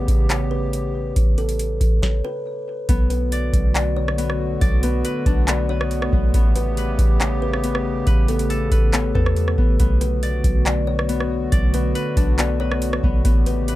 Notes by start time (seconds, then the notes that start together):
Already playing: C#3 A3 B3 G4 B4
0.08 A1, kick, closed hi-hat
0.30 C#5, clap, closed hi-hat
0.51 B4
0.73 closed hi-hat
1.16 A1, kick, closed hi-hat
1.38 A4, closed hi-hat
1.49 closed hi-hat
1.59 closed hi-hat
1.81 A1, kick, closed hi-hat
2.03 C#5, kick, snare
2.25 B4
2.89 B1 D3 A3 B3 F#4, kick, closed hi-hat
3.10 B4, closed hi-hat
3.32 D5, closed hi-hat
3.53 B1, kick, closed hi-hat
3.75 D5, clap, closed hi-hat
3.96 C#5
4.08 cross-stick
4.18 B3, closed hi-hat
4.30 cross-stick
4.61 B1 D5, kick, closed hi-hat
4.83 B3 B4, closed hi-hat
5.04 B4, closed hi-hat
5.26 B1 D4, kick, closed hi-hat
5.47 B3 D5, clap, closed hi-hat
5.69 B4 C#5
5.81 cross-stick
5.91 closed hi-hat
6.02 cross-stick
6.13 B1 B3, kick
6.34 A1 C#3 B3 G4, kick, closed hi-hat
6.56 B4, closed hi-hat
6.77 B4, closed hi-hat
6.99 A1, kick, closed hi-hat
7.21 C#5, clap, closed hi-hat
7.42 B4
7.53 cross-stick
7.64 B3, closed hi-hat
7.75 cross-stick
8.07 A1 B4, kick, closed hi-hat
8.28 B3 A4, closed hi-hat
8.39 closed hi-hat
8.50 A4, closed hi-hat
8.71 A1 B4, kick, closed hi-hat
8.93 B3 C#5, clap, closed hi-hat
9.15 E2 A4 B4, kick
9.26 cross-stick
9.37 closed hi-hat
9.48 cross-stick
9.58 A1 B3, kick
9.80 B1 D3 B3 F#4, kick, closed hi-hat
10.01 B4, closed hi-hat
10.23 D5, closed hi-hat
10.44 B1, kick, closed hi-hat
10.66 D5, clap, closed hi-hat
10.87 C#5
10.99 cross-stick
11.09 B3, closed hi-hat
11.20 cross-stick
11.52 B1 D5, kick, closed hi-hat
11.74 B3 B4, closed hi-hat
11.95 B4, closed hi-hat
12.17 B1 D4, kick, closed hi-hat
12.38 B3 D5, clap, closed hi-hat
12.60 B4 C#5
12.72 cross-stick
12.82 closed hi-hat
12.93 cross-stick
13.03 B1 B3, kick
13.25 A1 C#3 A3 B3 G4, kick, closed hi-hat
13.46 B4, closed hi-hat
13.68 B4, closed hi-hat